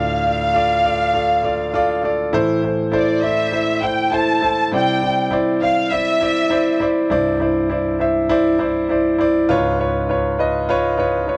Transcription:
Already playing: D2 A2 F4 A4 D5 F5
0.25 F4 A4 D5
0.54 F4 A4 D5
0.84 F4 A4 D5
1.13 F4 A4 D5
1.43 F4 A4 D5
1.74 F4 A4 D5
2.04 F4 A4 D5
2.33 A2 E3 E4 A4 C5
2.62 E4 A4 C5
2.92 E4 A4 C5 D5
3.22 E4 A4 D5 E5
3.52 E4 A4 C5
3.81 E4 A4 C5 G5
4.11 E4 A4 C5 A5
4.41 E4 A4 C5
4.72 C3 G3 E4 C5 D5 G5
5.02 E4 C5 D5
5.31 E4 C5 D5
5.61 E4 C5 D5 F5
5.91 E4 C5 D5 E5
6.21 E4 C5 D5
6.50 E4 C5 D5
6.80 E4 C5 D5
7.10 C2 G2 E4 C5 D5
7.40 E4 C5 D5
7.70 E4 C5 D5
7.99 E4 C5 E5
8.29 E4 C5 D5
8.59 E4 C5 D5
8.89 E4 C5 D5
9.18 E4 C5 D5
9.49 C#2 G#2 F4 B4 C#5
9.79 F4 B4 C#5
10.09 F4 B4 C#5
10.38 F4 B4 D#5
10.69 F4 B4 C#5
10.98 F4 B4 C#5
11.27 F4 B4 C#5

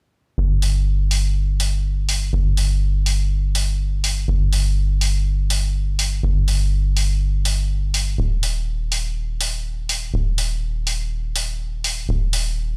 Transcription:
0.38 G1
0.62 open hi-hat
1.11 open hi-hat
1.60 open hi-hat
2.09 open hi-hat
2.33 G1
2.57 open hi-hat
3.06 open hi-hat
3.55 open hi-hat
4.04 open hi-hat
4.28 G1
4.53 open hi-hat
5.01 open hi-hat
5.50 open hi-hat
5.99 open hi-hat
6.23 G1
6.48 open hi-hat
6.97 open hi-hat
7.45 open hi-hat
7.94 open hi-hat
8.18 D#1
8.43 open hi-hat
8.92 open hi-hat
9.41 open hi-hat
9.89 open hi-hat
10.14 D#1
10.38 open hi-hat
10.87 open hi-hat
11.36 open hi-hat
11.84 open hi-hat
12.09 D#1
12.33 open hi-hat

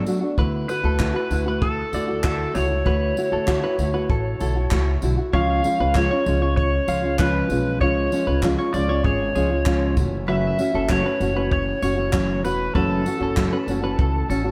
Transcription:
0.06 F#3 A3 D4 F#4, tambourine
0.21 A3 D4 F#4
0.38 D2 D3 A3 E4 F#4 B4, kick
0.69 D3 A3 E4 F#4 B4, tambourine
0.83 D2 A3 E4 F#4 A4
0.99 D3 A3 E4 F#4, kick, clap
1.14 A3 E4 F#4 B4
1.30 D2 D3 A3 E4 F#4, tambourine
1.46 A3 E4 F#4 B4
1.62 A4, kick
1.92 D2 D3 A3 E4 F#4 D5, tambourine
2.08 A3 E4 F#4
2.23 D3 A3 E4 F#4 A4, kick, clap
2.54 C#2 D3 A3 E4 F#4 C#5, tambourine
2.69 A3 E4 F#4
2.84 D2 D3 A3 E4 F#4 B4, kick
3.16 D3 A3 E4 F#4, tambourine
3.32 D2 A3 E4 F#4 A4
3.46 D3 A3 E4 F#4, kick, clap
3.62 A3 E4 F#4 B4
3.78 D2 D3 A3 E4 F#4, tambourine
3.94 A3 E4 F#4 B4
4.09 A1 A4, kick
4.39 B1 D3 A3 E4 F#4 A4, tambourine
4.55 A3 E4 F#4
4.71 C#2 A3 E4 F#4, kick, clap
5.01 B1 D3 A3 E4 F#4, tambourine
5.17 A3 E4 F#4
5.33 C#2 C#3 F3 G#3 C#4 F4 C#5 F5, kick
5.64 F3 G#3 C#4 F4, tambourine
5.79 C#2 G#3 C#4 F4 B4
5.95 C#3 F3 G#3 C#4 F4 C#5, kick, clap
6.11 G#3 C#4 F4 C#5
6.25 C#2 F3 G#3 C#4 F4, tambourine
6.41 G#3 C#4 F4 C#5
6.57 C#5, kick
6.87 C#2 F3 G#3 C#4 F4 F5, tambourine
7.03 G#3 C#4 F4
7.19 C#3 F3 G#3 C#4 F4 B4, kick, clap
7.49 B1 F3 G#3 C#4 F4, tambourine
7.81 C#2 C#3 F3 G#3 C#4 F4 C#5, kick
8.11 F3 G#3 C#4 F4, tambourine
8.27 C#2 G#3 C#4 F4 B4
8.43 C#3 F3 G#3 C#4 F4, kick, clap
8.58 G#3 C#4 F4 C#5
8.73 C#2 F3 G#3 C#4 F4 D5, tambourine
8.89 G#3 C#4 F4 C#5
9.04 G#1 G#4 C#5, kick
9.35 C#2 F3 G#3 C#4 F4 G#4, tambourine
9.50 G#3 C#4 F4
9.66 C#3 F3 G#3 C#4 F4, kick, clap
9.96 F#1 E3 A3 C#4 F#4, kick, tambourine
10.26 F#2 C#3 E3 A3 C#4 F#4 B4 E5
10.57 E3 A3 C#4 F#4, tambourine
10.73 F#1 E3 A3 C#4 F#4 A4
10.89 F#2 C#3 E3 A3 C#4 F#4 C#5, kick, clap
11.04 E3 A3 C#4 F#4 B4
11.20 F#1 E3 A3 C#4 F#4, tambourine
11.35 E3 A3 C#4 F#4 B4
11.52 C#5, kick
11.81 F#1 E3 A3 C#4 F#4 C#5, tambourine
11.96 E3 A3 C#4 F#4
12.11 F#2 C#3 E3 A3 C#4 F#4, kick, clap
12.43 E1 E3 A3 C#4 F#4 B4, tambourine
12.74 F#1 F#2 C#3 E3 A3 C#4 F#4 A4 B4, kick
13.04 E3 A3 C#4 F#4, tambourine
13.19 F#1 E3 A3 C#4 F#4 A4
13.36 F#2 C#3 E3 A3 C#4 F#4, kick, clap
13.52 E3 A3 C#4 F#4 B4
13.67 F#1 E3 A3 C#4 F#4, tambourine
13.82 E3 A3 C#4 F#4 B4
13.99 C#2 A4, kick
14.29 A1 E3 A3 C#4 F#4 A4, tambourine
14.44 E3 A3 C#4 F#4

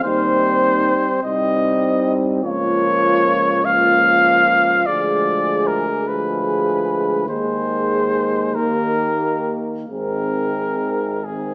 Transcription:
0.03 D#2 G3 C4 D#4 C5
1.23 C2 G3 C4 D#4 D#5
2.42 C#2 F3 A#3 F4 C#5
3.65 F3 A#3 F4 F5
4.86 D2 F3 G#3 G#4 D5
5.67 A#4
6.07 F3 G#3 G#4 B4
7.26 D#2 D#3 G#3 G#4 C5
8.54 D#3 A#3 G4 A#4
9.89 G#1 D#3 C4 G#4 A#4
11.24 D#3 C4 G#4

